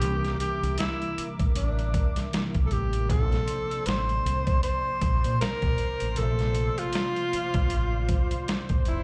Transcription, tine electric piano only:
0.00 C3 E3 G3
0.05 A#3 C#4
0.13 D4
2.32 C3 E3 G3 A#3
2.36 E4
3.07 C3 F3
3.11 A#3 C4
3.15 C4
3.22 D4
6.14 C3 F3
6.19 A3 A#3
6.23 E5

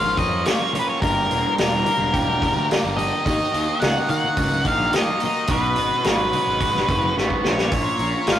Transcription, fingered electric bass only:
Already playing: G#1
0.17 F2
1.02 G1
1.30 E1
1.58 E1
1.99 E1
2.55 D2
2.84 G1
3.26 D#2
3.54 D#2
3.82 C#2
4.10 D#3
4.37 C#2
4.65 A#1
5.48 B1
5.77 G#1
6.05 G#1
6.47 G#1
6.88 F#1
7.17 G#1
7.44 A#1
7.72 A#1
7.99 A#1
8.28 G#1

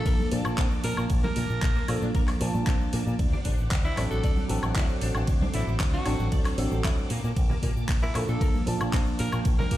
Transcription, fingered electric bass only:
0.06 A#1
0.32 A#2
0.46 A#2
0.58 A#1
0.84 A#2
0.98 A#2
1.10 A#1
1.36 A#2
1.50 A#2
1.62 A#1
1.89 A#2
2.02 A#2
2.15 A#1
2.41 A#2
2.55 A#2
2.67 A#1
2.93 A#2
3.07 A#2
3.19 D2
3.45 A1
3.59 A1
3.72 D2
3.97 A1
4.11 A1
4.23 D2
4.49 A1
4.63 A1
4.76 D2
5.02 A1
5.15 A1
5.28 D2
5.54 A1
5.67 A1
5.80 D2
6.06 A1
6.19 A1
6.32 D2
6.58 A1
6.71 A1
6.84 D2
7.11 A#2
7.24 A#2
7.37 A#1
7.63 A#2
7.76 A#2
7.89 A#1
8.15 A#2
8.28 A#2
8.41 A#1
8.67 A#2
8.81 A#2
8.93 A#1
9.20 A#2
9.33 A#2
9.45 A#1
9.71 A#2

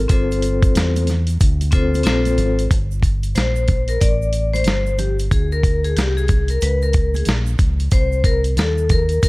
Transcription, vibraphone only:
0.08 C4 F4 A4 C5
1.71 C4 F4 A4 C5
2.04 C4 F4 A4 C5
3.35 C5
3.89 A#4
4.01 D5
4.54 C5
4.99 G4
5.32 G#4
5.52 A#4
5.84 G#4
5.96 G4
6.17 G#4
6.50 A#4
6.63 B4
6.83 A#4
7.15 G#4
7.92 C5
8.25 A#4
8.58 A4
8.92 A#4
9.24 A#4

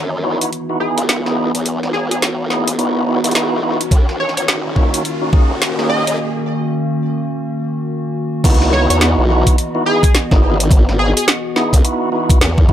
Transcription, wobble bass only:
Already playing: F#2
0.98 C#2
1.54 E2
1.83 G#1
2.68 C#2
2.79 G#1
3.24 C#2
3.91 D#2
4.37 G#1
5.50 D#2
6.07 F#2
8.44 C#2
8.90 E2
9.18 B1
10.32 G#1
11.73 C#2
12.41 E2

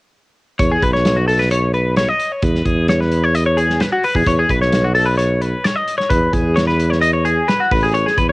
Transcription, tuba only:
0.59 E2
0.83 B1
2.43 E2
2.65 E2
4.15 E2
4.26 E2
4.49 B1
6.10 E2
6.34 E2
7.71 A1
8.18 E2

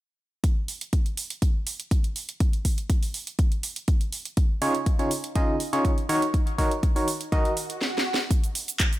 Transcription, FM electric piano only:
4.62 C#3 D#4 F4 G#4 C#5
4.99 C#3 D#4 F4 G#4 C#5
5.36 C#3 D#4 F4 G#4 D#5
5.73 C#3 D#4 F4 G#4 C#5
6.09 D#3 D#4 F#4 A#4 C#5
6.58 D#3 D#4 F#4 A#4 C#5
6.96 D#3 D#4 F#4 A#4 C#5
7.32 D#3 D#4 F#4 A#4 D#5

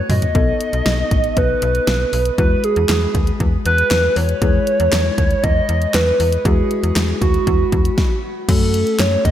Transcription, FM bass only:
0.09 F#2
0.35 B1
0.73 B1
0.86 B1
1.11 A1
1.37 B1
1.62 B1
1.87 B1
2.13 B1
2.38 E2
2.77 E2
2.89 E2
3.15 D#2
3.40 E2
3.66 E2
3.91 E2
4.16 E2
4.42 E2
4.80 E2
4.93 E2
5.18 D#2
5.44 E2
5.69 E2
5.94 E2
6.20 E2
6.45 E2
6.83 E2
6.96 E2
7.22 D#2
7.47 E2
7.72 E2
8.49 F#2
8.99 F#2
9.25 C#2

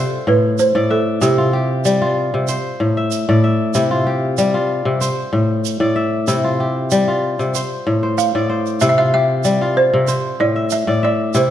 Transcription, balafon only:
Already playing: A4
0.28 B4
0.59 C5
0.91 A4
1.22 G4
8.18 F5
8.81 E5
8.89 E5
8.98 E5
9.14 E5
9.77 C5
10.41 D5
10.72 E5
11.05 D5
11.37 C5

